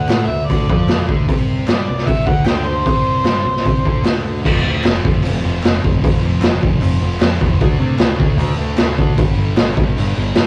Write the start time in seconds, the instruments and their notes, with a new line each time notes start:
Already playing: harmonica F#5
0.08 picked electric bass A2, distorted electric guitar A3, snare, clap, open hi-hat
0.27 picked electric bass D2, distorted electric guitar D3, harmonica E5
0.46 distorted electric guitar D3, harmonica D5, open hi-hat
0.50 picked electric bass D2, kick
0.69 picked electric bass F2, distorted electric guitar F3, kick
0.89 snare, clap, open hi-hat
1.07 picked electric bass D2, distorted electric guitar D3, kick
1.28 picked electric bass C2, distorted electric guitar C3, kick, open hi-hat
1.67 picked electric bass G2, distorted electric guitar G3, harmonica D5, snare, clap, open hi-hat
1.88 picked electric bass C2, distorted electric guitar C3
1.98 snare
2.07 picked electric bass C2, distorted electric guitar C3, harmonica E5, kick, open hi-hat
2.26 picked electric bass D2, distorted electric guitar D3, harmonica F#5, kick
2.45 picked electric bass D2, distorted electric guitar D3, harmonica G5, snare, clap, open hi-hat
2.67 harmonica C5
2.86 picked electric bass C2, distorted electric guitar C3, kick, open hi-hat
3.24 picked electric bass G2, distorted electric guitar G3, snare, clap, open hi-hat
3.44 picked electric bass C2, distorted electric guitar C3
3.56 snare
3.65 picked electric bass C2, distorted electric guitar C3, kick, open hi-hat
3.85 picked electric bass D2, distorted electric guitar D3, kick
4.04 picked electric bass D2, distorted electric guitar D3, snare, clap, open hi-hat
4.44 picked electric bass F1, distorted electric guitar F2 C3 F3, kick, crash
4.63 picked electric bass D2, distorted electric guitar F2 C3 F3
4.84 picked electric bass F1, distorted electric guitar F2 C3 F3, snare, clap, open hi-hat
5.04 picked electric bass F1, distorted electric guitar F2 C3 F3, kick
5.24 picked electric bass F1, distorted electric guitar F2 C3 F3, clap, open hi-hat
5.43 picked electric bass F1, distorted electric guitar F2 C3 F3
5.63 picked electric bass F1, distorted electric guitar F2 C3 F3, snare, clap, open hi-hat
5.83 picked electric bass F1, distorted electric guitar F2 C3 F3, kick
6.03 picked electric bass F1, distorted electric guitar F2 C3 F3, kick, open hi-hat
6.22 picked electric bass F1, distorted electric guitar F2 C3 F3
6.41 picked electric bass F1, distorted electric guitar F2 C3 F3, snare, clap, open hi-hat
6.61 picked electric bass F1, distorted electric guitar F2 C3 F3, kick
6.81 picked electric bass F1, distorted electric guitar F2 C3 F3, clap, open hi-hat
7.01 picked electric bass F1, distorted electric guitar F2 C3 F3
7.20 distorted electric guitar F2 C3 F3, picked electric bass F2, snare, clap, open hi-hat
7.41 picked electric bass E2, distorted electric guitar F2 C3 F3, kick
7.60 picked electric bass D2, distorted electric guitar D3 A3 D4, kick, open hi-hat
7.79 picked electric bass C3, distorted electric guitar D3 A3 D4
7.99 picked electric bass D2, distorted electric guitar D3 A3 D4, snare, clap, open hi-hat
8.19 picked electric bass D2, distorted electric guitar D3 A3 D4, kick
8.37 picked electric bass D2, distorted electric guitar D3 A3 D4, clap, open hi-hat
8.58 picked electric bass D2, distorted electric guitar D3 A3 D4
8.78 picked electric bass D2, distorted electric guitar D3 A3 D4, snare, clap, open hi-hat
8.98 picked electric bass D2, distorted electric guitar D3 A3 D4, kick
9.18 picked electric bass G1, distorted electric guitar G2 D3 G3, kick, open hi-hat
9.37 picked electric bass G1, distorted electric guitar G2 D3 G3
9.57 picked electric bass G1, distorted electric guitar G2 D3 G3, snare, clap, open hi-hat
9.77 picked electric bass G1, distorted electric guitar G2 D3 G3, kick
9.97 picked electric bass G1, distorted electric guitar G2 D3 G3, clap, open hi-hat
10.16 picked electric bass G1, distorted electric guitar G2 D3 G3
10.35 distorted electric guitar G2 D3 G3, picked electric bass G2, snare, clap, open hi-hat